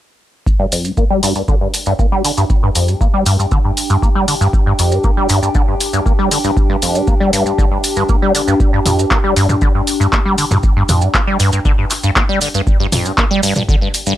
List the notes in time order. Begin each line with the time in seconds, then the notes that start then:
0.47 D4, kick, maracas
0.59 G2
0.72 F2, open hi-hat, maracas
0.84 G2, maracas
0.95 A#3 G4, kick, maracas
1.10 G3
1.20 G2 G5, open hi-hat, maracas
1.35 G2, maracas
1.48 D3, kick, maracas
1.61 G2
1.74 open hi-hat, maracas
1.86 G2, maracas
1.99 A#3, kick, maracas
2.12 G3
2.25 D3, open hi-hat, maracas
2.37 G2, maracas
2.50 kick, maracas
2.63 G2
2.75 F2, open hi-hat, maracas
2.88 G2, maracas
3.01 A#3, kick, maracas
3.14 G3
3.26 G2, open hi-hat, maracas
3.39 G2, maracas
3.51 D3, kick, maracas
3.65 G2
3.77 open hi-hat, maracas
3.90 G2, maracas
4.02 A#3, kick, maracas
4.15 G3
4.28 D3, open hi-hat, maracas
4.41 G2, maracas
4.53 kick, maracas
4.66 G2
4.79 F2, open hi-hat, maracas
4.92 G2, maracas
5.04 A#3, kick, maracas
5.17 G3
5.29 G2, open hi-hat, maracas
5.43 G2, maracas
5.55 D3, kick, maracas
5.68 G2
5.81 open hi-hat, maracas
5.93 G2, maracas
6.06 A#3, kick, maracas
6.19 G3
6.31 D3, open hi-hat, maracas
6.44 G2, maracas
6.57 kick, maracas
6.70 G2
6.82 F2, open hi-hat, maracas
6.95 G2, maracas
7.07 A#3, kick, maracas
7.20 G3
7.33 G2, open hi-hat, maracas
7.46 maracas
7.58 D3, kick, maracas
7.71 G2
7.84 open hi-hat, maracas
7.96 G2, maracas
8.09 A#3, kick, maracas
8.22 G3
8.35 D3, open hi-hat, maracas
8.48 G2, maracas
8.60 kick, maracas
8.73 G2
8.86 F2, open hi-hat, mid tom, maracas
8.98 G2, maracas
9.11 A#3, kick, clap, maracas
9.24 G3
9.36 G2, open hi-hat, maracas
9.49 G2, mid tom, maracas
9.61 D3, kick, maracas
9.75 G2
9.87 open hi-hat, maracas
10.00 G2, maracas
10.13 A#3, kick, clap, maracas
10.26 G3
10.38 D3, open hi-hat, maracas
10.51 G2, mid tom, maracas
10.63 kick, maracas
10.76 G2
10.89 F2, open hi-hat, mid tom, maracas
11.01 G2, maracas
11.14 A#3, kick, clap, maracas
11.27 G3
11.40 G2, open hi-hat, maracas
11.52 G2, maracas
11.65 D3, kick, maracas
11.78 G2
11.90 clap, open hi-hat, maracas
12.03 G2, maracas
12.16 A#3, kick, clap, maracas
12.29 G3
12.41 D3, open hi-hat, maracas
12.54 G2, maracas
12.67 kick, maracas
12.80 G2
12.92 F2, open hi-hat, mid tom, maracas
13.05 G2, maracas
13.18 A#3, kick, clap, maracas
13.31 G3
13.43 G2, open hi-hat, maracas
13.55 G2, mid tom, maracas
13.69 D3, kick, maracas
13.81 G2
13.94 open hi-hat, maracas
14.06 G2, maracas